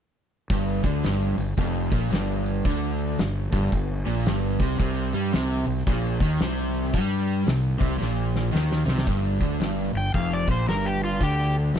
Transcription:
0.50 0.81 G1 medium
0.50 0.83 G2 loud
0.50 kick loud
0.50 open hi-hat medium
0.83 1.02 D2 medium
0.83 1.03 D3 medium
0.83 kick loud
0.83 open hi-hat medium
1.03 1.35 G1 medium
1.03 1.36 G2 loud
1.03 snare loud
1.03 open hi-hat medium
1.37 1.56 G1 medium
1.37 1.54 G2 medium
1.37 open hi-hat medium
1.58 1.89 F1 loud
1.58 1.90 F2 loud
1.58 kick loud
1.58 open hi-hat medium
1.91 2.10 A#1 medium
1.91 2.11 A#2 loud
1.91 kick loud
1.91 open hi-hat medium
2.10 2.61 G1 medium
2.10 2.64 G2 medium
2.10 snare loud
2.10 open hi-hat medium
2.46 open hi-hat medium
2.65 3.15 D2 medium
2.65 3.18 D3 loud
2.65 kick loud
2.65 open hi-hat medium
2.99 open hi-hat medium
3.18 3.50 G1 medium
3.18 3.46 G2 medium
3.18 snare loud
3.18 open hi-hat medium
3.53 3.71 G1 medium
3.53 3.72 G2 loud
3.53 kick loud
3.53 open hi-hat medium
3.72 4.04 G1 medium
3.72 4.00 G2 medium
3.72 kick medium
3.72 open hi-hat medium
4.06 4.25 A#1 medium
4.06 4.25 A#2 loud
4.06 open hi-hat medium
4.26 4.57 G1 loud
4.26 4.59 G2 loud
4.26 snare loud
4.26 open hi-hat medium
4.60 4.78 C2 medium
4.60 4.79 C3 loud
4.60 kick loud
4.60 open hi-hat medium
4.79 5.11 C2 loud
4.79 5.12 C3 loud
4.79 kick loud
4.79 open hi-hat medium
5.13 5.32 G2 loud
5.13 5.33 G3 loud
5.13 open hi-hat medium
5.33 5.65 C2 medium
5.33 5.66 C3 loud
5.33 snare loud
5.33 open hi-hat medium
5.67 5.86 C2 medium
5.67 5.83 C3 medium
5.67 open hi-hat medium
5.78 snare soft
5.87 6.18 A#1 medium
5.87 6.20 A#2 loud
5.87 kick loud
5.87 open hi-hat medium
6.20 6.39 D#2 medium
6.20 6.40 D#3 loud
6.20 kick loud
6.20 open hi-hat medium
6.40 6.90 C2 medium
6.40 6.94 C3 medium
6.40 snare loud
6.40 open hi-hat medium
6.74 open hi-hat medium
6.85 snare soft
6.93 7.43 G2 medium
6.93 7.47 G3 loud
6.93 kick loud
6.93 open hi-hat medium
7.28 open hi-hat medium
7.47 7.78 C2 medium
7.47 7.74 C3 medium
7.47 snare loud
7.47 open hi-hat medium
7.79 7.99 C2 medium
7.79 7.98 C3 loud
7.79 kick loud
7.79 open hi-hat medium
7.92 snare soft
7.98 8.51 A#1 medium
7.98 8.52 A#2 loud
7.98 snare medium
8.36 snare medium
8.52 8.86 D#2 medium
8.52 8.85 D#3 loud
8.52 snare medium
8.72 snare medium
8.86 9.06 C2 medium
8.86 9.06 C3 loud
8.86 snare medium
8.98 snare medium
9.07 9.38 G1 medium
9.07 9.40 G2 loud
9.07 kick medium
9.07 open hi-hat medium
9.40 9.59 D2 medium
9.40 9.60 D3 medium
9.40 kick loud
9.40 open hi-hat medium
9.60 9.92 G1 medium
9.60 9.92 G2 loud
9.60 snare loud
9.60 open hi-hat medium
9.93 10.13 G1 medium
9.93 10.10 G2 medium
9.93 10.14 G5 medium
9.93 open hi-hat medium
10.14 10.46 F1 medium
10.14 10.47 F2 loud
10.14 10.32 F5 medium
10.14 kick loud
10.14 open hi-hat medium
10.33 10.50 D5 medium
10.48 10.66 A#1 medium
10.48 10.67 A#2 loud
10.48 10.68 C5 medium
10.48 kick loud
10.48 open hi-hat medium
10.67 11.18 G1 medium
10.67 11.20 G2 medium
10.67 10.86 A#4 medium
10.67 snare loud
10.67 open hi-hat medium
10.86 11.03 G4 medium
11.01 11.21 F4 medium
11.01 open hi-hat medium
11.13 snare soft
11.21 11.70 D2 medium
11.21 11.73 D3 loud
11.21 11.54 G4 medium
11.21 kick medium
11.21 open hi-hat medium
11.55 open hi-hat medium
11.73 11.79 G1 medium
11.73 11.79 G2 medium
11.73 snare loud
11.73 open hi-hat medium

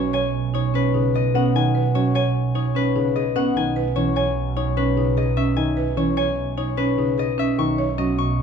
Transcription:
0.00 3.44 B1 medium
0.00 0.19 F#3 medium
0.00 0.19 C#4 medium
0.00 0.74 B4 medium
0.00 0.53 C#5 medium
0.00 1.14 D#5 medium
0.00 0.12 G#5 medium
0.13 0.40 C#5 medium
0.13 1.54 G#5 medium
0.54 0.80 D#4 medium
0.54 1.94 C#5 medium
0.74 1.00 C#4 medium
0.74 2.75 B4 medium
0.94 1.20 C#3 medium
0.94 1.20 D#4 medium
1.14 1.40 G#4 soft
1.14 3.14 D#5 medium
1.34 1.60 B3 medium
1.34 1.61 C#4 medium
1.34 3.35 F#5 medium
1.55 1.81 D#3 medium
1.55 2.14 G#5 medium
1.75 2.01 B4 medium
1.95 2.21 F#3 medium
1.95 2.21 C#4 medium
1.95 2.54 C#5 medium
2.15 2.41 C#5 medium
2.15 3.55 G#5 medium
2.55 2.81 D#4 medium
2.55 3.57 C#5 medium
2.75 3.01 C#4 medium
2.75 4.76 B4 medium
2.96 3.22 C#3 medium
2.96 3.22 D#4 medium
3.16 3.42 G#4 medium
3.16 5.16 D#5 medium
3.36 3.62 B3 medium
3.36 3.62 C#4 medium
3.36 3.57 F#5 medium
3.56 7.46 B1 medium
3.56 3.82 D#3 medium
3.56 4.15 G#5 medium
3.76 4.02 B4 medium
3.96 4.22 E3 medium
3.96 4.22 C#4 medium
3.96 4.55 C#5 medium
4.16 4.42 C#5 medium
4.16 5.55 G#5 medium
4.56 4.83 D#4 medium
4.56 5.96 C#5 medium
4.77 5.03 C#4 medium
4.77 6.76 B4 medium
4.96 5.23 C#3 medium
4.96 5.23 D#4 medium
5.17 5.43 G#4 medium
5.17 7.18 D#5 medium
5.37 5.63 C#4 medium
5.37 7.38 E5 medium
5.56 5.83 D#3 medium
5.56 6.16 G#5 medium
5.77 6.03 B4 medium
5.97 6.23 E3 medium
5.97 6.23 C#4 medium
5.97 6.56 C#5 medium
6.17 6.43 C#5 medium
6.17 7.60 G#5 medium
6.57 6.84 D#4 medium
6.57 8.42 C#5 medium
6.77 7.04 C#4 medium
6.77 7.60 B4 medium
6.98 7.24 C#3 medium
6.98 7.24 D#4 medium
7.18 7.44 G#4 medium
7.18 7.60 D#5 medium
7.38 7.64 C#4 medium
7.38 7.60 E5 medium
7.58 8.42 B1 medium
7.58 7.84 D#3 medium
7.58 8.17 C#6 medium
7.78 8.05 C#5 medium
7.98 8.25 F#3 medium
7.98 8.25 C#4 medium
7.98 8.42 D#5 medium
8.18 8.42 C#6 medium

